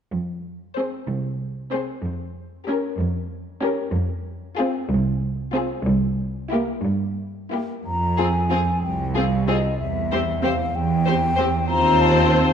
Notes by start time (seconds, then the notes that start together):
0.13 F2
0.77 C4 G#4 C5
1.09 C2
1.72 C4 G#4 C5
2.04 F2
2.67 C#4 G4 A#4
2.99 F2
3.62 C#4 G4 A#4
3.94 F2
4.58 C4 F4 G#4
4.90 C2
5.55 C4 F4 G#4
5.87 C2
6.52 A#3 E4 G4
6.85 G2
7.52 A#3 E4 G4
7.86 F2 A#5
8.18 C4 F4 G#4 G#5
8.50 C4 F4 G#4
8.83 C2 G5
9.15 C4 F4 G#4 F5
9.48 C4 F4 G#4 D#5
9.79 E2 E5
10.11 C4 G4 C5
10.42 C4 G4 C5 F5
10.74 E2 G5
11.06 C4 G4 C5
11.36 C4 G4 C5
11.68 D#2 C4 F4 C5 A#5
12.01 A5